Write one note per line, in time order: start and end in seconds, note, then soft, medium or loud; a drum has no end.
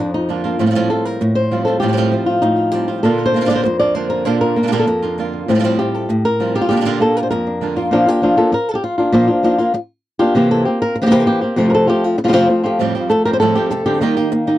0.00 0.59 F2 medium
0.00 1.83 F3 medium
0.00 0.14 D4 medium
0.00 0.14 F4 medium
0.14 0.29 D#4 medium
0.29 0.43 D3 soft
0.29 0.44 A#3 soft
0.29 0.44 D4 soft
0.29 0.59 F4 medium
0.29 0.43 F4 soft
0.44 0.58 A#3 soft
0.44 0.60 A#3 soft
0.44 0.59 D4 soft
0.44 0.59 F4 soft
0.59 0.74 A2 medium
0.59 1.20 A2 medium
0.59 0.65 F3 medium
0.59 0.65 G3 medium
0.59 0.66 C4 medium
0.59 1.52 F4 soft
0.59 0.66 F4 medium
0.66 0.69 F3 soft
0.66 0.70 G3 soft
0.66 0.70 C4 soft
0.66 0.71 F4 soft
0.71 0.74 F3 soft
0.71 0.75 G3 medium
0.71 0.75 C4 soft
0.71 0.75 F4 medium
0.75 0.90 A2 medium
0.75 0.90 F3 medium
0.75 0.90 G3 medium
0.75 0.90 C4 medium
0.75 0.89 F4 medium
0.90 1.20 G3 soft
0.90 1.20 C4 soft
0.90 1.20 F4 soft
0.90 1.05 A4 medium
1.05 1.35 A#4 medium
1.21 1.80 A2 medium
1.21 muted nylon-string guitar stroke medium
1.35 1.64 C5 medium
1.51 1.66 F3 soft
1.51 1.66 G3 soft
1.51 1.66 C4 soft
1.51 1.83 F4 soft
1.51 1.66 F4 soft
1.65 1.82 G3 soft
1.65 1.82 C4 soft
1.65 1.81 F4 soft
1.65 1.79 A4 medium
1.80 2.41 A2 medium
1.80 1.96 A2 medium
1.80 1.87 F3 medium
1.80 1.87 G3 medium
1.80 1.88 C4 medium
1.80 1.88 F4 medium
1.80 2.26 G4 medium
1.88 1.91 F3 soft
1.88 1.92 G3 soft
1.88 1.92 C4 soft
1.88 1.93 F4 soft
1.93 1.96 F3 soft
1.93 1.97 G3 soft
1.93 1.97 C4 soft
1.93 1.97 F4 medium
1.97 2.12 A2 medium
1.97 2.12 F3 medium
1.97 2.12 G3 medium
1.97 2.12 C4 medium
1.97 2.11 F4 medium
2.11 3.03 F3 medium
2.11 2.42 G3 soft
2.11 2.42 C4 soft
2.11 2.42 F4 soft
2.26 2.55 F4 medium
2.42 3.02 A2 medium
2.42 2.88 D#4 medium
2.42 muted nylon-string guitar stroke soft
2.56 2.72 F4 medium
2.72 2.88 F3 soft
2.72 2.88 G3 soft
2.72 2.88 C4 soft
2.72 2.87 F4 soft
2.72 3.03 G4 medium
2.88 3.04 G3 soft
2.88 3.03 C4 soft
2.88 3.03 F4 soft
3.03 3.64 A#2 medium
3.03 3.34 A#2 medium
3.03 3.34 D3 medium
3.03 3.34 A#3 soft
3.03 3.34 A#3 medium
3.03 4.24 D4 soft
3.03 3.34 D4 medium
3.03 3.33 F4 medium
3.03 3.49 A4 medium
3.18 3.25 A#4 medium
3.26 3.47 C5 medium
3.34 3.40 D3 soft
3.34 4.24 A#3 medium
3.34 3.40 A#3 soft
3.34 3.37 D4 soft
3.34 3.40 D4 soft
3.34 3.36 F4 soft
3.34 3.41 F4 soft
3.41 3.44 D3 soft
3.41 3.44 A#3 soft
3.41 3.45 D4 medium
3.41 3.45 F4 soft
3.45 3.49 D3 medium
3.45 3.49 A#3 medium
3.45 3.49 D4 medium
3.45 3.50 F4 medium
3.45 3.55 D5 medium
3.49 3.64 A#2 medium
3.49 3.64 D3 medium
3.49 3.65 A#3 medium
3.49 3.65 D4 medium
3.49 3.65 F4 medium
3.56 3.62 C5 medium
3.64 4.26 F2 medium
3.64 3.79 C5 medium
3.64 muted nylon-string guitar stroke soft
3.79 3.94 A#3 soft
3.79 3.95 D4 soft
3.79 3.95 F4 soft
3.79 3.95 D5 medium
3.95 4.25 D3 soft
3.95 4.25 A#3 soft
3.95 4.25 D4 soft
3.95 4.26 F4 soft
3.95 4.09 C5 medium
4.10 4.25 A#4 medium
4.25 4.55 A#2 medium
4.25 4.87 A#2 medium
4.25 4.56 D3 medium
4.25 4.56 A#3 medium
4.25 4.56 D4 medium
4.25 4.55 F4 medium
4.25 4.41 C5 medium
4.41 4.86 A#4 medium
4.56 5.46 A#3 medium
4.56 4.62 A#3 soft
4.56 4.63 D4 soft
4.56 4.63 F4 soft
4.63 4.66 D3 soft
4.63 4.67 A#3 soft
4.63 4.67 D4 soft
4.63 4.67 F4 soft
4.67 4.71 D3 medium
4.67 4.71 A#3 medium
4.67 4.72 D4 soft
4.67 4.72 F4 medium
4.72 4.86 A#2 medium
4.72 4.86 D3 medium
4.72 4.86 A#3 medium
4.72 4.87 D4 medium
4.72 4.87 F4 medium
4.72 4.79 G4 medium
4.79 5.17 A4 medium
4.87 5.48 F2 medium
4.87 5.48 A#4 medium
4.87 muted nylon-string guitar stroke soft
5.02 5.17 A#3 soft
5.02 5.18 D4 soft
5.02 5.17 F4 soft
5.18 5.48 D3 soft
5.18 5.48 A#3 soft
5.18 5.48 D4 soft
5.18 5.49 F4 soft
5.33 5.50 F4 soft
5.48 6.08 A2 medium
5.48 5.62 A2 medium
5.48 5.54 F3 medium
5.48 5.51 G3 medium
5.48 5.79 A3 soft
5.48 5.63 C4 soft
5.48 5.54 C4 medium
5.48 5.55 F4 medium
5.48 5.78 F4 soft
5.55 5.58 F3 soft
5.55 5.58 G3 soft
5.55 5.59 C4 medium
5.55 5.59 F4 soft
5.59 5.63 F3 soft
5.59 5.63 G3 medium
5.59 5.64 C4 medium
5.59 5.64 F4 medium
5.64 5.78 A2 medium
5.64 5.78 F3 medium
5.64 5.78 G3 medium
5.64 6.69 C4 soft
5.64 5.79 C4 medium
5.64 5.78 F4 medium
5.79 6.09 G3 soft
5.79 6.09 C4 soft
5.79 6.09 F4 soft
5.79 6.24 G4 medium
5.94 6.25 A4 medium
6.09 6.68 A2 medium
6.09 muted nylon-string guitar stroke soft
6.25 6.55 A#4 medium
6.40 6.54 F3 soft
6.40 6.55 G3 soft
6.40 6.55 C4 soft
6.40 6.55 F4 soft
6.40 6.54 F4 soft
6.55 6.70 G3 soft
6.55 6.70 C4 soft
6.55 6.70 F4 soft
6.55 6.68 G4 medium
6.61 6.70 F4 medium
6.69 7.31 A#2 medium
6.69 6.84 A#2 medium
6.69 6.75 D3 medium
6.69 6.73 A#3 medium
6.69 6.76 D4 soft
6.69 6.76 F4 medium
6.69 7.31 G4 medium
6.76 6.79 D3 soft
6.76 6.80 A#3 soft
6.76 6.80 D4 soft
6.76 6.81 F4 soft
6.81 6.85 D3 soft
6.81 6.85 A#3 medium
6.81 6.85 D4 medium
6.81 6.85 F4 medium
6.85 7.00 A#2 medium
6.85 7.00 D3 medium
6.85 7.00 A#3 medium
6.85 7.46 D4 soft
6.85 7.00 D4 medium
6.85 6.99 F4 medium
7.00 7.90 A#3 medium
7.00 7.31 A#3 soft
7.00 7.31 D4 soft
7.00 7.30 F4 soft
7.00 7.17 A4 medium
7.17 7.22 A#4 medium
7.23 7.30 C5 medium
7.31 7.92 F2 medium
7.31 7.92 A#4 medium
7.31 muted nylon-string guitar stroke soft
7.47 7.90 D4 soft
7.61 7.76 D3 soft
7.61 7.76 A#3 soft
7.61 7.76 D4 soft
7.61 7.75 F4 soft
7.76 7.92 A#3 soft
7.76 7.92 D4 soft
7.76 7.91 F4 soft
7.76 7.91 F4 medium
7.91 8.06 A#2 medium
7.91 8.07 F3 medium
7.91 8.07 A#3 medium
7.91 8.06 D4 medium
7.91 8.06 F4 medium
8.06 8.22 A#3 soft
8.06 8.22 D4 soft
8.06 8.21 F4 medium
8.06 8.23 G4 medium
8.22 8.37 F3 medium
8.22 8.37 A#3 medium
8.22 8.37 D4 medium
8.22 8.36 F4 medium
8.37 8.51 A#3 medium
8.37 8.52 D4 soft
8.37 8.52 F4 medium
8.37 8.53 A4 medium
8.52 8.69 A#4 medium
8.52 muted nylon-string guitar stroke medium
8.69 8.72 A4 medium
8.74 8.82 G4 medium
8.74 8.76 A4 medium
8.84 8.97 F4 medium
8.98 9.13 A#3 soft
8.98 9.13 D4 soft
8.98 9.13 F4 medium
9.12 9.28 A#2 medium
9.12 9.28 F3 medium
9.12 9.28 A#3 medium
9.12 9.28 D4 medium
9.12 9.26 F4 medium
9.27 9.42 A#3 soft
9.27 9.44 D4 soft
9.27 9.43 F4 soft
9.43 9.58 F3 medium
9.43 9.59 A#3 medium
9.43 9.58 D4 medium
9.43 9.59 D#4 medium
9.43 9.57 F4 medium
9.58 9.73 A#3 soft
9.58 9.73 D4 medium
9.58 9.73 F4 medium
9.74 muted nylon-string guitar stroke medium
10.19 10.35 A#3 soft
10.19 10.35 D4 medium
10.19 10.35 F4 medium
10.19 10.36 G4 medium
10.35 10.65 C3 medium
10.35 10.65 E3 medium
10.35 10.66 A#3 medium
10.35 10.65 C4 medium
10.35 10.51 G4 medium
10.51 10.65 A4 loud
10.65 10.95 A#3 soft
10.65 10.95 C4 medium
10.65 10.81 G4 medium
10.82 10.96 A#4 medium
10.95 muted nylon-string guitar stroke medium
11.02 11.05 E3 medium
11.02 11.05 A#3 medium
11.02 11.06 C4 medium
11.02 11.06 G4 medium
11.06 11.10 E3 medium
11.06 11.10 A#3 medium
11.06 11.10 C4 medium
11.06 11.12 G4 medium
11.11 11.26 C3 medium
11.11 11.25 E3 medium
11.11 11.26 A#3 medium
11.11 11.26 C4 medium
11.11 11.26 G4 loud
11.11 11.20 A#4 loud
11.20 11.27 A4 medium
11.26 11.41 E3 medium
11.26 11.41 A#3 medium
11.26 11.41 C4 medium
11.26 11.40 G4 medium
11.41 11.57 A#3 soft
11.41 11.57 C4 soft
11.41 11.58 G4 medium
11.56 11.87 F2 medium
11.56 11.87 C3 medium
11.56 11.87 F3 medium
11.56 11.87 A3 medium
11.56 11.87 C4 medium
11.56 11.69 F4 medium
11.70 11.73 A#4 medium
11.75 11.89 A4 medium
11.87 12.17 F3 soft
11.87 12.17 A3 soft
11.87 12.18 C4 medium
11.87 12.03 F4 soft
11.87 12.04 G4 medium
12.04 12.17 F4 medium
12.18 muted nylon-string guitar stroke medium
12.24 12.27 C3 soft
12.24 12.27 F3 medium
12.24 12.28 A3 medium
12.24 12.28 C4 medium
12.24 12.28 F4 medium
12.28 12.32 C3 medium
12.28 12.32 F3 medium
12.28 12.32 A3 medium
12.28 12.32 C4 medium
12.28 12.33 F4 medium
12.33 12.48 F2 medium
12.33 12.48 C3 medium
12.33 12.47 F3 medium
12.33 12.48 A3 medium
12.33 12.48 C4 medium
12.33 12.48 F4 medium
12.48 12.63 F3 medium
12.48 12.63 A3 medium
12.48 12.63 C4 medium
12.48 12.62 F4 medium
12.63 12.79 F3 soft
12.63 12.79 A3 soft
12.63 12.79 C4 soft
12.63 12.78 F4 soft
12.63 12.94 G4 medium
12.79 14.01 F2 medium
12.79 12.94 F2 medium
12.79 12.94 A2 medium
12.79 12.94 F3 medium
12.79 12.95 G3 medium
12.79 12.94 C4 medium
12.79 12.94 G4 medium
12.95 13.10 F3 soft
12.95 13.10 G3 soft
12.95 13.10 C4 soft
12.95 13.55 F4 soft
12.95 13.09 G4 soft
13.09 13.99 A3 medium
13.09 13.25 A4 medium
13.09 muted nylon-string guitar stroke soft
13.25 13.40 F3 soft
13.25 13.41 G3 soft
13.25 13.40 C4 soft
13.25 13.40 G4 soft
13.25 13.33 A#4 medium
13.33 13.39 C5 medium
13.40 13.55 F2 medium
13.40 13.55 A2 medium
13.40 13.56 F3 medium
13.40 13.56 G3 medium
13.40 13.55 C4 medium
13.40 13.54 G4 medium
13.40 13.69 A4 medium
13.55 13.70 F3 soft
13.55 13.71 G3 soft
13.55 13.71 C4 soft
13.55 13.84 G4 medium
13.55 13.70 G4 soft
13.70 13.85 C3 medium
13.70 14.01 A4 medium
13.70 muted nylon-string guitar stroke medium
13.86 14.01 D3 medium
13.86 14.01 F3 soft
13.86 14.01 G3 soft
13.86 14.01 C4 soft
13.86 14.01 G4 medium
13.86 14.01 G4 soft
14.01 14.58 D#3 medium
14.01 14.16 D#3 medium
14.01 14.16 G3 medium
14.01 14.17 A#3 soft
14.01 14.16 A#3 medium
14.01 14.46 D#4 medium
14.01 14.17 D#4 medium
14.01 14.16 G4 medium
14.17 14.31 A#3 soft
14.17 14.31 D#4 soft
14.17 14.31 G4 soft
14.32 14.58 A#3 medium
14.32 muted nylon-string guitar stroke medium
14.47 14.58 A#3 soft
14.47 14.58 D#4 medium
14.47 14.58 D#4 soft
14.47 14.58 G4 soft